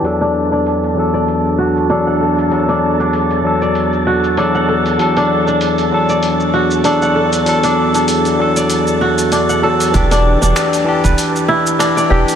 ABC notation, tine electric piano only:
X:1
M:4/4
L:1/8
Q:"Swing 16ths" 1/4=97
K:Dmix
V:1 name="Tine electric piano"
[E,,F,DA]3 [E,,F,DA]3 [E,,F,DA]2 | [E,,F,DA]3 [E,,F,DA]3 [E,,F,DA]2 | [E,,F,DA]3 [E,,F,DA]3 [E,,F,DA]2 | [E,,F,DA]3 [E,,F,DA]3 z [E,,F,DA] |
[E,DG]3 [E,DG]3 z [E,DG] |]